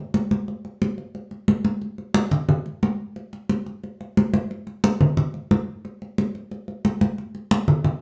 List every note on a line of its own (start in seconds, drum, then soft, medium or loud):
0.14 high conga medium
0.31 high conga medium
0.48 high conga soft
0.65 high conga soft
0.82 high conga medium
0.98 high conga soft
1.15 high conga soft
1.31 high conga soft
1.48 high conga medium
1.65 high conga medium
1.82 high conga soft
1.98 high conga soft
2.14 high conga loud
2.31 high conga soft
2.31 low conga medium
2.49 high conga soft
2.49 low conga medium
2.66 high conga soft
2.83 high conga medium
3.16 high conga soft
3.33 high conga soft
3.49 high conga medium
3.66 high conga soft
3.84 high conga soft
4.01 high conga soft
4.17 high conga medium
4.34 high conga medium
4.51 high conga soft
4.67 high conga soft
4.84 high conga loud
5.01 high conga soft
5.01 low conga medium
5.17 high conga soft
5.17 low conga medium
5.34 high conga soft
5.51 high conga medium
5.85 high conga soft
6.02 high conga soft
6.18 high conga medium
6.35 high conga soft
6.51 high conga soft
6.68 high conga soft
6.85 high conga medium
7.01 high conga medium
7.18 high conga soft
7.35 high conga soft
7.51 high conga loud
7.68 high conga soft
7.68 low conga medium
7.84 high conga soft
7.84 low conga medium